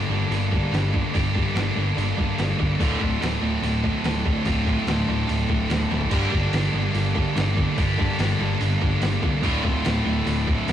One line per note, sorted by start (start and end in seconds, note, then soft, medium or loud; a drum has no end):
0.00 1.12 G2 medium
0.00 1.13 D3 medium
0.00 1.13 G3 medium
0.00 1.13 A#3 medium
0.00 1.15 D4 medium
0.00 1.14 G4 medium
0.09 0.24 G1 loud
0.09 0.29 G2 medium
0.09 0.29 D3 medium
0.23 snare soft
0.30 0.59 G1 loud
0.30 0.50 G2 medium
0.30 0.50 D3 medium
0.30 open hi-hat medium
0.51 0.70 G2 medium
0.51 0.70 D3 medium
0.51 kick medium
0.72 1.00 G1 medium
0.72 0.91 G2 medium
0.72 0.91 D3 medium
0.72 snare loud
0.72 open hi-hat medium
0.92 1.11 G2 medium
0.92 1.12 D3 medium
0.92 kick medium
1.13 1.43 G1 loud
1.13 2.78 G2 medium
1.13 1.32 G2 medium
1.13 2.79 D3 medium
1.13 1.33 D3 medium
1.13 2.79 G3 medium
1.13 2.79 A#3 medium
1.13 4.65 D4 medium
1.13 2.80 G4 loud
1.13 kick loud
1.13 open hi-hat medium
1.35 1.54 G2 medium
1.35 1.54 D3 medium
1.35 kick medium
1.54 1.69 G1 loud
1.54 1.75 G2 medium
1.54 1.75 D3 medium
1.54 snare loud
1.54 open hi-hat medium
1.76 1.90 G1 loud
1.76 1.95 G2 medium
1.76 1.95 D3 medium
1.97 2.11 G1 loud
1.97 2.16 G2 medium
1.97 2.16 D3 medium
1.97 open hi-hat medium
2.17 2.32 G1 medium
2.17 2.36 G2 medium
2.17 2.37 D3 medium
2.17 kick medium
2.38 2.53 G1 medium
2.38 2.57 G2 medium
2.38 2.57 D3 medium
2.38 snare loud
2.38 open hi-hat medium
2.59 2.73 G1 medium
2.59 2.78 G2 medium
2.59 2.78 D3 medium
2.59 kick medium
2.79 2.94 D1 loud
2.79 2.99 D2 medium
2.79 4.44 D2 medium
2.79 2.99 A2 medium
2.79 4.44 A2 medium
2.79 3.00 D3 loud
2.79 4.45 D3 loud
2.79 4.46 A3 loud
2.79 4.46 F4 medium
2.79 kick loud
2.79 open hi-hat medium
3.00 3.15 D1 medium
3.00 3.19 D2 medium
3.00 3.19 A2 medium
3.00 kick medium
3.21 3.36 D1 loud
3.21 3.40 D2 medium
3.21 3.40 A2 medium
3.21 snare loud
3.21 open hi-hat medium
3.41 3.56 D1 medium
3.41 3.60 D2 medium
3.41 3.61 A2 medium
3.62 3.91 D1 medium
3.62 3.82 D2 medium
3.62 3.82 A2 medium
3.62 open hi-hat medium
3.83 4.02 D2 medium
3.83 4.02 A2 medium
3.83 kick medium
4.04 4.33 D1 medium
4.04 4.23 D2 medium
4.04 4.23 A2 medium
4.04 snare loud
4.04 open hi-hat medium
4.24 4.43 D2 medium
4.24 4.44 A2 medium
4.24 kick medium
4.44 4.74 D1 loud
4.44 4.63 D2 medium
4.44 6.10 D2 medium
4.44 4.64 A2 medium
4.44 6.11 A2 medium
4.44 6.10 D3 medium
4.44 6.11 A3 medium
4.44 6.12 F4 medium
4.44 kick loud
4.44 open hi-hat medium
4.64 4.84 D2 medium
4.64 4.84 A2 medium
4.64 kick medium
4.86 5.01 D1 medium
4.86 5.05 D2 medium
4.86 5.05 A2 medium
4.86 snare loud
4.86 open hi-hat medium
5.06 5.22 D1 loud
5.06 5.26 D2 medium
5.06 5.26 A2 medium
5.20 snare soft
5.27 5.43 D1 loud
5.27 5.46 D2 medium
5.27 5.47 A2 medium
5.27 open hi-hat medium
5.48 5.64 D1 medium
5.48 5.67 D2 medium
5.48 5.68 A2 medium
5.48 kick medium
5.70 5.84 D1 medium
5.70 5.89 D2 medium
5.70 5.89 A2 medium
5.70 snare loud
5.70 open hi-hat medium
5.91 6.05 D1 medium
5.91 6.10 D2 medium
5.91 6.10 A2 medium
5.91 snare medium
6.01 floor tom medium
6.11 6.26 G1 loud
6.11 7.75 G2 medium
6.11 6.30 G2 medium
6.11 7.76 D3 medium
6.11 6.30 D3 loud
6.11 6.31 G3 loud
6.11 7.77 G3 medium
6.11 7.77 A#3 medium
6.11 7.79 D4 medium
6.11 7.77 G4 medium
6.11 kick loud
6.11 crash medium
6.31 6.47 G1 loud
6.31 6.51 G2 medium
6.31 6.51 D3 medium
6.31 kick medium
6.52 6.67 G1 loud
6.52 6.71 G2 medium
6.52 6.72 D3 medium
6.52 snare loud
6.52 open hi-hat medium
6.72 6.88 G1 medium
6.72 6.92 G2 medium
6.72 6.92 D3 medium
6.93 7.22 G1 loud
6.93 7.13 G2 medium
6.93 7.13 D3 medium
6.93 open hi-hat medium
7.14 7.33 G2 medium
7.14 7.33 D3 medium
7.14 kick medium
7.34 7.65 G1 medium
7.34 7.53 G2 medium
7.34 7.54 D3 medium
7.34 snare loud
7.34 open hi-hat medium
7.54 7.74 G2 medium
7.54 7.75 D3 medium
7.54 kick medium
7.76 8.06 G1 loud
7.76 7.96 G2 medium
7.76 9.42 G2 medium
7.76 7.96 D3 medium
7.76 9.42 D3 medium
7.76 9.42 G3 medium
7.76 9.43 A#3 medium
7.76 10.72 D4 loud
7.76 9.43 G4 loud
7.76 kick loud
7.76 open hi-hat medium
7.98 8.17 G2 medium
7.98 8.17 D3 medium
7.98 kick medium
8.19 8.33 G1 medium
8.19 8.38 G2 medium
8.19 8.38 D3 medium
8.19 snare loud
8.19 open hi-hat medium
8.39 8.54 G1 loud
8.39 8.58 G2 medium
8.39 8.59 D3 medium
8.52 snare soft
8.60 8.74 G1 medium
8.60 8.80 G2 medium
8.60 8.80 D3 medium
8.60 open hi-hat medium
8.81 8.96 G1 loud
8.81 9.00 G2 medium
8.81 9.00 D3 medium
8.81 kick loud
9.02 9.16 G1 medium
9.02 9.21 G2 medium
9.02 9.21 D3 medium
9.02 snare loud
9.02 open hi-hat medium
9.22 9.37 C2 loud
9.22 9.42 G2 medium
9.22 9.41 D3 medium
9.22 kick medium
9.42 9.58 D1 loud
9.42 9.62 D2 loud
9.42 10.72 D2 medium
9.42 9.62 A2 loud
9.42 10.72 A2 loud
9.42 10.72 D3 loud
9.42 9.63 D3 loud
9.42 10.72 A3 loud
9.42 10.72 F4 loud
9.42 kick loud
9.42 open hi-hat medium
9.63 9.78 D1 loud
9.63 9.83 D2 medium
9.63 9.83 A2 medium
9.63 kick medium
9.84 9.99 D1 loud
9.84 10.03 D2 medium
9.84 10.03 A2 loud
9.84 snare loud
9.84 open hi-hat medium
10.04 10.20 D1 loud
10.04 10.24 D2 medium
10.04 10.24 A2 medium
10.26 10.55 D1 loud
10.26 10.45 D2 medium
10.26 10.45 A2 medium
10.26 open hi-hat medium
10.47 10.65 D2 medium
10.47 10.66 A2 loud
10.47 kick medium
10.67 10.72 D1 medium
10.67 10.72 D2 medium
10.67 10.72 A2 medium
10.67 snare loud
10.67 open hi-hat medium